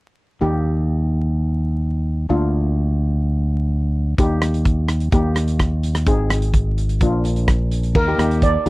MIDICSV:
0, 0, Header, 1, 5, 480
1, 0, Start_track
1, 0, Key_signature, -3, "major"
1, 0, Tempo, 471328
1, 423, Time_signature, 4, 2, 24, 8
1, 8851, End_track
2, 0, Start_track
2, 0, Title_t, "Steel pan"
2, 0, Program_c, 0, 114
2, 8102, Note_on_c, 0, 70, 80
2, 8588, Note_on_c, 0, 74, 83
2, 8596, Note_off_c, 0, 70, 0
2, 8851, Note_off_c, 0, 74, 0
2, 8851, End_track
3, 0, Start_track
3, 0, Title_t, "Steel pan"
3, 0, Program_c, 1, 114
3, 417, Note_on_c, 1, 58, 55
3, 421, Note_on_c, 1, 63, 51
3, 422, Note_on_c, 1, 67, 64
3, 2302, Note_off_c, 1, 58, 0
3, 2304, Note_off_c, 1, 63, 0
3, 2304, Note_off_c, 1, 67, 0
3, 2335, Note_on_c, 1, 58, 56
3, 2339, Note_on_c, 1, 62, 53
3, 2341, Note_on_c, 1, 65, 66
3, 4221, Note_off_c, 1, 58, 0
3, 4222, Note_off_c, 1, 62, 0
3, 4224, Note_off_c, 1, 65, 0
3, 4267, Note_on_c, 1, 58, 58
3, 4268, Note_on_c, 1, 63, 57
3, 4274, Note_on_c, 1, 67, 69
3, 5206, Note_off_c, 1, 58, 0
3, 5206, Note_off_c, 1, 63, 0
3, 5210, Note_off_c, 1, 67, 0
3, 5227, Note_on_c, 1, 58, 61
3, 5228, Note_on_c, 1, 67, 64
3, 5230, Note_on_c, 1, 63, 53
3, 6166, Note_off_c, 1, 58, 0
3, 6166, Note_off_c, 1, 67, 0
3, 6167, Note_off_c, 1, 63, 0
3, 6179, Note_on_c, 1, 60, 60
3, 6180, Note_on_c, 1, 63, 57
3, 6186, Note_on_c, 1, 68, 67
3, 7121, Note_off_c, 1, 60, 0
3, 7122, Note_off_c, 1, 63, 0
3, 7125, Note_off_c, 1, 68, 0
3, 7151, Note_on_c, 1, 58, 59
3, 7155, Note_on_c, 1, 62, 55
3, 7159, Note_on_c, 1, 65, 65
3, 8087, Note_off_c, 1, 58, 0
3, 8089, Note_off_c, 1, 62, 0
3, 8091, Note_off_c, 1, 65, 0
3, 8224, Note_on_c, 1, 63, 57
3, 8228, Note_on_c, 1, 58, 61
3, 8230, Note_on_c, 1, 67, 64
3, 8295, Note_off_c, 1, 63, 0
3, 8297, Note_off_c, 1, 58, 0
3, 8298, Note_off_c, 1, 67, 0
3, 8335, Note_on_c, 1, 58, 59
3, 8343, Note_on_c, 1, 63, 57
3, 8344, Note_on_c, 1, 67, 68
3, 8626, Note_off_c, 1, 58, 0
3, 8630, Note_off_c, 1, 63, 0
3, 8630, Note_off_c, 1, 67, 0
3, 8818, Note_on_c, 1, 58, 62
3, 8851, Note_off_c, 1, 58, 0
3, 8851, End_track
4, 0, Start_track
4, 0, Title_t, "Fingered electric bass"
4, 0, Program_c, 2, 33
4, 427, Note_on_c, 2, 39, 65
4, 2307, Note_off_c, 2, 39, 0
4, 2342, Note_on_c, 2, 38, 66
4, 4224, Note_off_c, 2, 38, 0
4, 4262, Note_on_c, 2, 39, 65
4, 5203, Note_off_c, 2, 39, 0
4, 5219, Note_on_c, 2, 39, 66
4, 6161, Note_off_c, 2, 39, 0
4, 6178, Note_on_c, 2, 32, 69
4, 7121, Note_off_c, 2, 32, 0
4, 7137, Note_on_c, 2, 34, 70
4, 8080, Note_off_c, 2, 34, 0
4, 8094, Note_on_c, 2, 39, 78
4, 8286, Note_off_c, 2, 39, 0
4, 8333, Note_on_c, 2, 39, 72
4, 8713, Note_off_c, 2, 39, 0
4, 8818, Note_on_c, 2, 39, 84
4, 8851, Note_off_c, 2, 39, 0
4, 8851, End_track
5, 0, Start_track
5, 0, Title_t, "Drums"
5, 4260, Note_on_c, 9, 36, 84
5, 4263, Note_on_c, 9, 42, 48
5, 4362, Note_off_c, 9, 36, 0
5, 4365, Note_off_c, 9, 42, 0
5, 4498, Note_on_c, 9, 37, 73
5, 4498, Note_on_c, 9, 42, 66
5, 4600, Note_off_c, 9, 37, 0
5, 4600, Note_off_c, 9, 42, 0
5, 4625, Note_on_c, 9, 42, 52
5, 4726, Note_off_c, 9, 42, 0
5, 4737, Note_on_c, 9, 42, 51
5, 4740, Note_on_c, 9, 36, 72
5, 4839, Note_off_c, 9, 42, 0
5, 4841, Note_off_c, 9, 36, 0
5, 4974, Note_on_c, 9, 37, 64
5, 4974, Note_on_c, 9, 42, 71
5, 5076, Note_off_c, 9, 37, 0
5, 5076, Note_off_c, 9, 42, 0
5, 5096, Note_on_c, 9, 42, 50
5, 5198, Note_off_c, 9, 42, 0
5, 5218, Note_on_c, 9, 36, 89
5, 5218, Note_on_c, 9, 42, 52
5, 5320, Note_off_c, 9, 36, 0
5, 5320, Note_off_c, 9, 42, 0
5, 5457, Note_on_c, 9, 37, 61
5, 5457, Note_on_c, 9, 42, 69
5, 5559, Note_off_c, 9, 37, 0
5, 5559, Note_off_c, 9, 42, 0
5, 5578, Note_on_c, 9, 42, 55
5, 5680, Note_off_c, 9, 42, 0
5, 5698, Note_on_c, 9, 36, 74
5, 5702, Note_on_c, 9, 37, 76
5, 5702, Note_on_c, 9, 42, 57
5, 5800, Note_off_c, 9, 36, 0
5, 5804, Note_off_c, 9, 37, 0
5, 5804, Note_off_c, 9, 42, 0
5, 5941, Note_on_c, 9, 42, 73
5, 6043, Note_off_c, 9, 42, 0
5, 6059, Note_on_c, 9, 37, 65
5, 6059, Note_on_c, 9, 42, 53
5, 6160, Note_off_c, 9, 37, 0
5, 6160, Note_off_c, 9, 42, 0
5, 6176, Note_on_c, 9, 42, 55
5, 6177, Note_on_c, 9, 36, 86
5, 6278, Note_off_c, 9, 42, 0
5, 6279, Note_off_c, 9, 36, 0
5, 6420, Note_on_c, 9, 37, 73
5, 6420, Note_on_c, 9, 42, 74
5, 6521, Note_off_c, 9, 37, 0
5, 6521, Note_off_c, 9, 42, 0
5, 6538, Note_on_c, 9, 42, 56
5, 6640, Note_off_c, 9, 42, 0
5, 6657, Note_on_c, 9, 36, 73
5, 6657, Note_on_c, 9, 42, 55
5, 6759, Note_off_c, 9, 36, 0
5, 6759, Note_off_c, 9, 42, 0
5, 6903, Note_on_c, 9, 42, 67
5, 7005, Note_off_c, 9, 42, 0
5, 7019, Note_on_c, 9, 42, 50
5, 7121, Note_off_c, 9, 42, 0
5, 7136, Note_on_c, 9, 42, 51
5, 7137, Note_on_c, 9, 36, 87
5, 7238, Note_off_c, 9, 42, 0
5, 7239, Note_off_c, 9, 36, 0
5, 7382, Note_on_c, 9, 42, 69
5, 7484, Note_off_c, 9, 42, 0
5, 7498, Note_on_c, 9, 42, 50
5, 7599, Note_off_c, 9, 42, 0
5, 7616, Note_on_c, 9, 36, 75
5, 7617, Note_on_c, 9, 37, 75
5, 7617, Note_on_c, 9, 42, 54
5, 7718, Note_off_c, 9, 36, 0
5, 7719, Note_off_c, 9, 37, 0
5, 7719, Note_off_c, 9, 42, 0
5, 7856, Note_on_c, 9, 42, 69
5, 7958, Note_off_c, 9, 42, 0
5, 7977, Note_on_c, 9, 42, 50
5, 8079, Note_off_c, 9, 42, 0
5, 8096, Note_on_c, 9, 36, 87
5, 8098, Note_on_c, 9, 49, 75
5, 8198, Note_off_c, 9, 36, 0
5, 8200, Note_off_c, 9, 49, 0
5, 8343, Note_on_c, 9, 37, 77
5, 8343, Note_on_c, 9, 42, 73
5, 8445, Note_off_c, 9, 37, 0
5, 8445, Note_off_c, 9, 42, 0
5, 8464, Note_on_c, 9, 42, 55
5, 8566, Note_off_c, 9, 42, 0
5, 8575, Note_on_c, 9, 36, 71
5, 8580, Note_on_c, 9, 42, 53
5, 8677, Note_off_c, 9, 36, 0
5, 8682, Note_off_c, 9, 42, 0
5, 8820, Note_on_c, 9, 42, 75
5, 8851, Note_off_c, 9, 42, 0
5, 8851, End_track
0, 0, End_of_file